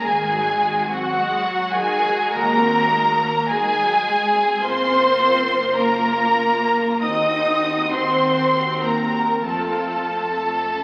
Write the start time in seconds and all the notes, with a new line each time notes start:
0.04 G#1 D#3 G#3 F#4 G#4 G#5
0.33 F#3
0.61 G#3
0.89 F#3 C4 F#4 F#5
1.17 G#3
1.46 F#3
1.75 D#3 G#3 G#4 G#5
2.04 F#3
2.32 D#2 G#3 A#3 A#4 A#5
2.61 C4
2.90 G#3
3.21 F#3
3.50 D#3 G#3 G#4 G#5
3.81 F#3
4.08 G#3
4.36 C4
4.63 F#1 A#3 C4 F4 C5 C6
5.76 A#3 F4 A#4 A#5
7.01 D#2 C4 D#4 F#4 D#5 D#6
7.91 C4 C5 C6
8.82 A#3 A#4 A#5
9.44 F2 A3 C4 F4 A4 A5
10.72 C#4